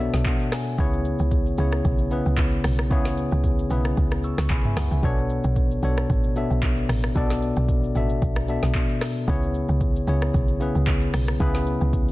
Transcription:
Already playing: C#5
0.00 B2 B3 D4 A4 E5
0.14 B1, snare, shaker
0.25 F#5, kick, clap, shaker
0.40 shaker
0.52 G#5, cross-stick, snare, open hi-hat, shaker
0.67 shaker
0.78 C#2 C#3 B3 E4 G#4 C#5, kick, shaker
0.93 shaker
1.05 shaker
1.19 C#2, shaker
1.31 kick, shaker
1.46 shaker
1.57 C#2 C#3 B3 E4 G#4 C#5, shaker
1.72 cross-stick, shaker
1.85 B1, kick, shaker
1.98 shaker
2.10 C#3 B3 E4 G#4 B4, shaker
2.26 C#2, shaker
2.37 kick, clap, shaker
2.52 shaker
2.64 B1, cross-stick, open hi-hat, shaker
2.79 cross-stick, shaker
2.90 C#2 C#3 B3 E4 G#4 C#5, kick, shaker
3.05 snare, shaker
3.17 shaker
3.32 C#2, shaker
3.44 kick, shaker
3.59 shaker
3.70 B1 C#3 B3 E4 G#4 B4, shaker
3.84 cross-stick, shaker
3.97 C#2, kick, shaker
4.11 cross-stick, shaker
4.23 C#6 E6, shaker
4.38 C#2 C#6, cross-stick, snare, shaker
4.50 B1 G#5 B5, kick, clap, shaker
4.65 E5 G#5, mid tom, shaker
4.77 C#2 F#5, cross-stick, snare, open hi-hat, shaker
4.91 C#2 E5 G#5, shaker
5.03 B1 B2 B3 D4 A4 C#5, kick, shaker
5.18 shaker
5.30 shaker
5.44 B1, shaker
5.56 kick, shaker
5.71 shaker
5.82 B1 B2 B3 D4 A4 C#5, shaker
5.97 cross-stick, shaker
6.10 A1, kick, shaker
6.24 shaker
6.35 B2 B3 D4 A4 E5, shaker
6.50 B1, shaker
6.62 kick, clap, shaker
6.77 shaker
6.89 A1, cross-stick, open hi-hat, shaker
7.04 cross-stick, shaker
7.15 B1 B2 B3 D4 A4 D5, kick, shaker
7.30 snare, shaker
7.42 shaker
7.56 B1, shaker
7.69 kick, shaker
7.84 shaker
7.95 A1 B2 B3 D4 A4 E5, shaker
8.09 shaker
8.22 B1, kick, shaker
8.36 cross-stick, shaker
8.48 B2 B3 D4 A4 E5, shaker
8.63 B1, snare, shaker
8.74 kick, clap, shaker
8.89 shaker
9.01 cross-stick, snare, open hi-hat, shaker
9.16 shaker
9.27 C#2 C#3 B3 E4 G#4 C#5, kick, shaker
9.43 shaker
9.54 shaker
9.68 C#2, shaker
9.81 kick, shaker
9.96 shaker
10.07 C#2 C#3 B3 E4 G#4 C#5, shaker
10.22 cross-stick, shaker
10.34 B1, kick, shaker
10.48 shaker
10.60 C#3 B3 E4 G#4 B4, shaker
10.75 C#2, shaker
10.87 kick, clap, shaker
11.02 shaker
11.14 B1, cross-stick, open hi-hat, shaker
11.28 cross-stick, shaker
11.39 C#2 C#3 B3 E4 G#4 B4, kick, shaker
11.55 snare, shaker
11.67 shaker
11.81 C#2, shaker
11.93 kick, shaker
12.08 shaker

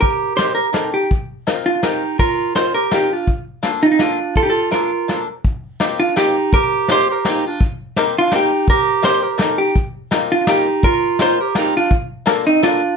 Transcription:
0.01 G4 A#4, kick, closed hi-hat
0.35 C4 D#4 G4 A#4 C5, snare, closed hi-hat
0.55 G4 A#4
0.72 C4 D#4 G4 A4 A#4, snare, closed hi-hat
0.93 D#4 G4
1.11 kick, closed hi-hat
1.47 C4 D#4 F4 A#4, snare, closed hi-hat
1.66 D4 F4
1.82 C4 D#4 F4 G4 A#4, snare, closed hi-hat
2.19 F4 A#4, kick, closed hi-hat
2.55 C4 D#4 F4 A#4 C5, snare, closed hi-hat
2.74 G4 A#4
2.91 C4 D#4 F4 G4 A#4, snare, closed hi-hat
3.11 D4 F4
3.27 kick, closed hi-hat
3.63 A#3 D4 F4 A4, snare, closed hi-hat
3.83 C4 D4 D#4 F4
3.91 C4 D#4
3.99 A#3 D4 F4 A4, snare, closed hi-hat
4.36 F4 A4, kick, closed hi-hat
4.43 D#4 G4
4.50 F4 A4
4.71 A#3 D4 F4 A4 A#4, snare, closed hi-hat
5.08 A#3 D4 F4 A4, snare, closed hi-hat
5.45 kick, closed hi-hat
5.80 A#3 C4 D#4 F4 G4, snare, closed hi-hat
5.99 D4 F4
6.16 A#3 C4 D#4 F4 G4, snare, closed hi-hat
6.53 G4 A#4, kick, closed hi-hat
6.88 A#3 C4 D#4 F4 G4 C5, snare, closed hi-hat
7.10 G4 A#4
7.25 A#3 C4 D#4 F4 G4, snare, closed hi-hat
7.29 D#4
7.47 D4 F4
7.60 kick, closed hi-hat
7.96 A#3 C4 D#4 G4 A#4, snare, closed hi-hat
8.18 D4 F4
8.32 A#3 C4 D#4 G4 A#4, snare, closed hi-hat
8.36 D#4 G4
8.67 G4 A#4, kick, closed hi-hat
9.02 A#3 C4 D#4 G4 A#4 C5, snare, closed hi-hat
9.22 G4 A#4
9.38 A#3 C4 D#4 G4 A4 A#4, snare, closed hi-hat
9.58 D#4 G4
9.76 kick, closed hi-hat
10.11 A#3 C4 D#4 F4 A#4, snare, closed hi-hat
10.31 D4 F4
10.47 A#3 C4 D#4 F4 G4 A#4, snare, closed hi-hat
10.83 F4 A#4, kick, closed hi-hat
11.19 A#3 C4 D#4 F4 A#4 C5, snare, closed hi-hat
11.40 G4 A#4
11.55 A#3 C4 D#4 F4 G4 A#4, snare, closed hi-hat
11.77 D4 F4
11.91 kick, closed hi-hat
12.26 A#3 D4 F4 A4 A#4, snare, closed hi-hat
12.46 C4 D#4
12.63 A#3 D4 F4 A4 A#4, snare, closed hi-hat

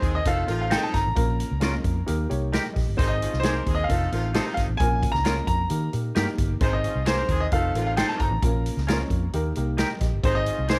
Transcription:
Already playing: C4 D#4 G#4 C5 D#5
0.00 D#2 D#3 G#3 C4 G#4, kick, closed hi-hat
0.15 D#5
0.24 F1 F3 A3 C4 D#4 F4 A4 F5, kick, closed hi-hat
0.47 A1 C3 F3 A3 C4 D#4 F4 A4, closed hi-hat
0.61 F5
0.70 C3 D#3 A3 C4 D#4 F4 G#4 A4 C5 G5, snare, closed hi-hat
0.76 A4
0.83 A5
0.94 G1 A#5, kick, snare, closed hi-hat
1.07 A1
1.15 A#1 A#3 C#4 F4 A#4, kick, closed hi-hat
1.40 closed hi-hat
1.51 C#2
1.60 A#3 C#4 F4 A#4, snare, closed hi-hat
1.84 F2, kick, closed hi-hat
2.06 D#2 A#3 D#4 G4 A#4, closed hi-hat
2.29 C2 A#3 D#4 G4 C#5, closed hi-hat
2.52 D#4 G4 A#4 G5, snare, closed hi-hat
2.74 A#1 G4 D#5, kick, snare, open hi-hat
2.88 G1
2.97 G#1 C3 D#3 G#3 C4 D#4 G#4 C5, kick, closed hi-hat
3.08 D#5
3.21 F3 C#4 F4, closed hi-hat
3.33 C2, snare
3.40 A#3 C4 D#4 G4 G#4 A#4 C5, closed hi-hat
3.44 G#4 C5, snare
3.66 D#2 D#3 G#3 C4 G#4, kick, closed hi-hat
3.75 D#5
3.84 F5
3.89 F1 F3 A3 C4 D#4 F4 A4, kick, closed hi-hat
4.11 A1 C3 F3 A3 C4 D#4 F4 A4, closed hi-hat
4.34 C3 D#3 A3 C4 D#4 F4 G4 A4 C5, snare, closed hi-hat
4.54 G1 F5, kick, closed hi-hat
4.59 snare
4.68 A1
4.77 A#1 A#3 C4 F4 A#4 G#5, kick, closed hi-hat
4.86 C#4
5.03 kick, closed hi-hat
5.12 C#2 A#5, snare
5.24 A#3 C#4 F4 A#4, snare, closed hi-hat
5.47 F2 A#5, kick, closed hi-hat
5.69 D#3 A#3 D#4 G4 A#4, closed hi-hat
5.93 A#2 A#3 D#4 G4 A#4, closed hi-hat
6.15 G2 A#3 D#4 F#4 G4 A#4, snare, closed hi-hat
6.22 G4
6.38 G1, kick, closed hi-hat
6.60 G#1 C3 D#3 G#3 C4 D#4 G#4 C5, kick, closed hi-hat
6.73 D#5
6.83 F3 C#4 F4, closed hi-hat
6.95 C2
7.04 A#3 C4 D#4 G4 G#4 A#4 C5, snare, closed hi-hat
7.08 D#4 G#4 B4
7.14 C5
7.29 D#2 D#3 G#3 C4 G#4, kick, closed hi-hat
7.40 D#5
7.52 F1 F3 A3 C4 D#4 F4 A4 F5, kick, closed hi-hat
7.75 A1 C3 F3 A3 C4 D#4 F4 A4, closed hi-hat
7.87 F5
7.97 C3 D#3 A3 C4 D#4 F4 A4 C5 G5, snare, closed hi-hat
8.09 A5
8.20 G1 A#5, kick, closed hi-hat
8.31 A1
8.42 A#1 A#3 C#4 F4 A#4, kick, closed hi-hat
8.66 closed hi-hat
8.77 C#2, snare
8.87 A#3 C#4 F4 A#4 C5, snare, closed hi-hat
8.94 C#5
9.10 F2, kick, closed hi-hat
9.33 D#2 A#3 D#4 G4 A#4, closed hi-hat
9.55 C2 A#3 D#4 G4 A#4, closed hi-hat
9.77 D#4 G4 A#4 G5, snare, closed hi-hat
10.01 A#1 G4 D#5, kick, snare, closed hi-hat
10.13 G1
10.23 G#1 C3 D#3 G#3 C4 D#4 G#4 C5, kick, closed hi-hat
10.35 D#5
10.46 F3 C#4 F4, closed hi-hat
10.59 C2
10.68 A#3 C4 D#4 G4 G#4 A#4 C5, snare, closed hi-hat

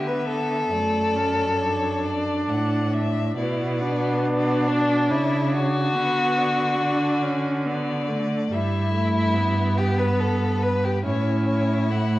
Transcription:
Already playing: D3 B3 E5
0.07 B4
0.28 A4
0.72 F#2 A3 D5
1.16 C#4
1.60 D4 C#5
2.05 D5
2.49 A2 F#5
2.93 E5
3.37 B2 B3 E4 D5
3.82 D4
4.25 D5
4.69 D4
5.10 C#3 E4 C#5
5.53 F#4
5.95 D3 B3 B4
6.38 D5
6.81 D4
7.23 C#4
7.66 B3 D5
8.08 A3
8.51 G2 G3 E4 E5
8.93 A3
9.34 B3 B4
9.78 G4
9.99 B4
10.20 A4
10.62 B4
10.84 G4
11.05 A2 C#4 E4 C#5
11.48 C#5
11.89 A3 F#5

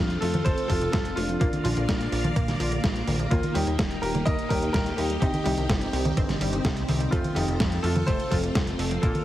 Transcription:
Already playing: C4 D4 F4 A4
0.00 F2
0.10 closed hi-hat
0.21 F2 A3 F4 A4, open hi-hat
0.34 F3, closed hi-hat, high conga
0.45 F1 A3 A4 C5, kick, closed hi-hat
0.58 closed hi-hat
0.68 F1 F3 F4 A4, kick, open hi-hat
0.81 C3, closed hi-hat
0.92 F1 A2 F4 A4, kick, snare, closed hi-hat
1.05 closed hi-hat
1.16 F1 A3 D4 F4, open hi-hat
1.29 F3, closed hi-hat
1.40 A#1 A#3 D4 F4 A#4 D5 F5, kick, closed hi-hat
1.53 closed hi-hat, high conga
1.64 A#1 F3 D4 F4, open hi-hat
1.76 A#1 D3, closed hi-hat
1.88 A#2, kick, snare, closed hi-hat
2.01 closed hi-hat
2.12 A#1 A#3, open hi-hat
2.24 F3, closed hi-hat, high conga
2.36 A#2 A#3, kick, closed hi-hat
2.48 snare, closed hi-hat, high conga
2.60 A#1 F3, open hi-hat
2.72 D3, closed hi-hat
2.84 A#1 A#2, kick, snare, closed hi-hat
2.96 closed hi-hat
3.07 A#1 A#3, open hi-hat, high conga
3.19 F3, closed hi-hat
3.30 D#2 A#3 D#4 F4 G4, kick, closed hi-hat
3.43 closed hi-hat, high conga
3.54 D#2 G3 D#4 G4, open hi-hat
3.67 D#2 D#3, closed hi-hat
3.79 D#1 A#2, kick, snare, closed hi-hat
3.91 closed hi-hat
4.02 D#1 A#3 G4 A#4, open hi-hat
4.15 G3, closed hi-hat, high conga
4.25 D#2 A#3 A#4 D#5, kick, closed hi-hat
4.39 closed hi-hat
4.49 D#2 G3 G4 A#4, kick, open hi-hat
4.62 D#3, closed hi-hat
4.73 D#2 A#2 G4 A#4, kick, snare, closed hi-hat
4.86 closed hi-hat
4.96 D#2 A#3 D#4 G4, open hi-hat
5.10 G3, closed hi-hat
5.20 C2 C4 D#4 G4, kick, closed hi-hat
5.34 closed hi-hat, high conga
5.44 C2 G3 D#4 G4, open hi-hat
5.57 C2 D#3, closed hi-hat
5.69 G1 C3, kick, snare, closed hi-hat
5.81 closed hi-hat
5.93 C2 C4, open hi-hat
6.05 G3, closed hi-hat, high conga
6.17 G1 C4, kick, closed hi-hat
6.29 snare, closed hi-hat, high conga
6.41 G1 G3, open hi-hat
6.53 D#3, closed hi-hat
6.64 C2 C3, kick, snare, closed hi-hat
6.77 closed hi-hat
6.88 C2 C4, open hi-hat, high conga
7.00 G3, closed hi-hat
7.11 F1 A3 C4 F4 A4, kick, closed hi-hat
7.24 closed hi-hat, high conga
7.35 F1 F3 D#4 G4, open hi-hat
7.48 F1 C3, closed hi-hat
7.60 F2 A2, kick, snare, closed hi-hat
7.72 closed hi-hat
7.83 F2 A3 F4 A4, open hi-hat
7.96 F3, closed hi-hat, high conga
8.06 F1 A3 A4 C5, kick, closed hi-hat
8.20 closed hi-hat
8.31 F1 F3 F4 A4, kick, open hi-hat
8.43 C3, closed hi-hat
8.55 F1 A2, kick, snare, closed hi-hat
8.67 closed hi-hat
8.79 F1 A3, open hi-hat
8.91 F3, closed hi-hat
9.02 A#1 A#3 F4 A4 A#4 D5 F5, kick, closed hi-hat
9.15 closed hi-hat, high conga

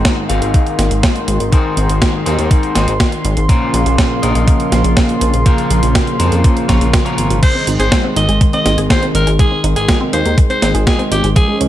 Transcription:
Already playing: G#2 D#3 G#3 C4 D#4 G#4 C5 C6
0.05 kick, snare, closed hi-hat
0.29 G#1 G#2 C4 D#4 G#4 F5, closed hi-hat
0.42 G#1, closed hi-hat
0.54 kick, closed hi-hat
0.67 closed hi-hat
0.79 G#1, snare, closed hi-hat
0.91 G#1, closed hi-hat
1.03 kick, snare, closed hi-hat
1.16 closed hi-hat
1.28 G#1, closed hi-hat
1.40 G#1, closed hi-hat
1.52 G#2 C4 D#4 G#4 C5, kick, closed hi-hat
1.77 G#1, closed hi-hat
1.89 G#1, closed hi-hat
2.02 kick, snare, closed hi-hat
2.26 D#2 G#2 C4 D#4 G#4 C5, closed hi-hat
2.39 D#2, closed hi-hat
2.51 kick, closed hi-hat
2.63 closed hi-hat
2.75 G#1 G#2 C4 D#4 G#4 C5, snare, closed hi-hat
2.88 G#1, closed hi-hat
3.00 kick, snare, closed hi-hat
3.12 closed hi-hat
3.25 G#1, closed hi-hat
3.37 G#1, closed hi-hat
3.49 A#2 C#3 F3 A#3 C#4 F4 A#4 C5, kick, closed hi-hat
3.74 A#1, closed hi-hat
3.86 A#1, closed hi-hat
3.98 kick, snare, closed hi-hat
4.22 A#1 A#2 C#4 F4 A#4 D#5, closed hi-hat
4.35 A#1, closed hi-hat
4.48 kick, closed hi-hat
4.60 closed hi-hat
4.72 A#1, snare, closed hi-hat
4.84 A#1, closed hi-hat
4.97 kick, snare, closed hi-hat
5.09 closed hi-hat
5.21 A#1, closed hi-hat
5.34 A#1, closed hi-hat
5.46 A#2 C#4 F4 A#4 C5, kick, closed hi-hat
5.58 closed hi-hat
5.71 A#1, closed hi-hat
5.83 A#1, closed hi-hat
5.95 kick, snare, closed hi-hat
6.07 closed hi-hat
6.19 F2 A#2 C#4 F4 A#4 C5, closed hi-hat
6.32 F2, closed hi-hat
6.44 kick, closed hi-hat
6.57 closed hi-hat
6.68 A#1 A#2 C#4 F4 A#4 C#5, kick, snare, closed hi-hat
6.81 A#1, closed hi-hat
6.94 kick, snare, closed hi-hat
7.05 A#2 C#4 F4 A#4 C#5, closed hi-hat
7.18 G#1, closed hi-hat
7.30 G#1, closed hi-hat
7.43 D#3 G#3 C5, kick, closed hi-hat, crash
7.55 C4
7.67 G#1 D#4, closed hi-hat
7.79 G#1 G#4 C5, closed hi-hat
7.92 G#3, kick, snare, closed hi-hat
8.04 C4
8.16 G#1 D#4 D#5, closed hi-hat
8.29 G#1 G#4, closed hi-hat
8.41 G#3, kick, closed hi-hat
8.53 C4 D#5, closed hi-hat
8.65 G#1 D#4, snare, closed hi-hat
8.78 G#1 G#4, closed hi-hat
8.90 G#3 C5, kick, snare, closed hi-hat
9.02 C4, closed hi-hat
9.15 G#1 D#4 A#4, closed hi-hat
9.27 G#1 G#4, closed hi-hat
9.39 G#3 G#4, kick, closed hi-hat
9.52 C4
9.64 G#1 D#4, closed hi-hat
9.76 G#1 G#4, closed hi-hat
9.88 G#3, kick, snare, closed hi-hat
10.01 C4
10.13 D#2 D#4 C5, closed hi-hat
10.25 D#2 G#4, closed hi-hat
10.38 G#3, kick, closed hi-hat
10.50 C4 C5, closed hi-hat
10.62 G#1 D#4, snare, closed hi-hat
10.75 G#1 G#4, closed hi-hat
10.87 G#3 G#4, kick, snare, closed hi-hat
10.99 C4, closed hi-hat
11.11 G#1 D#4 G4, closed hi-hat
11.24 G#1 G#4, closed hi-hat
11.36 F3 C#4 G#4, kick, closed hi-hat
11.48 G#3
11.61 C#2 C#4, closed hi-hat

